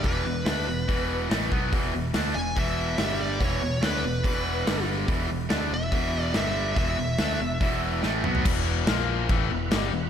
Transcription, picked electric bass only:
0.05 E1
0.25 E1
0.45 D2
0.67 E1
0.89 E1
1.31 A1
1.52 B1
1.72 E1
1.94 E1
2.14 D2
2.35 E1
2.57 E1
2.99 G1
3.41 E1
3.61 E1
3.83 D2
4.03 E1
4.24 E1
4.66 G1
5.08 E1
5.29 E1
5.51 D2
5.71 E1
5.92 E1
6.34 G1
6.77 E1
6.99 E1
7.19 D2
7.41 E1
7.60 E1
8.04 A1
8.25 B1
8.45 E1
8.88 A#1
9.29 A1
9.51 E1
9.72 G1
9.93 E1

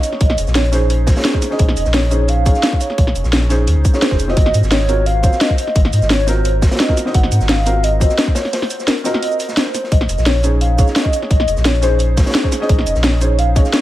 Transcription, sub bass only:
0.21 A#1
0.38 F1
0.47 A#1
1.60 A#1
1.77 F1
1.86 A#1
2.98 A#1
3.15 F1
3.25 A#1
3.68 D#2
3.76 C#2
4.11 F1
4.37 G#1
4.54 G#2
4.63 G#1
5.76 G#1
5.93 G#2
6.02 G#1
7.14 G#1
7.32 G#2
7.41 G#1
9.92 A#1
10.09 F1
10.18 A#1
11.31 A#1
11.48 F1
11.57 A#1
12.69 A#1
12.87 F1
12.96 A#1

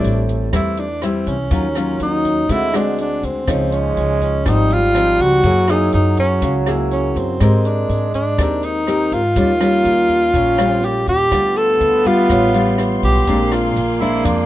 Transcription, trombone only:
Already playing: A3
1.52 F#3
2.50 G#3
3.48 G#3
4.46 G3
5.44 F#3
7.40 G#3
9.36 A#3
10.34 C#4
11.32 B3
13.28 A#3

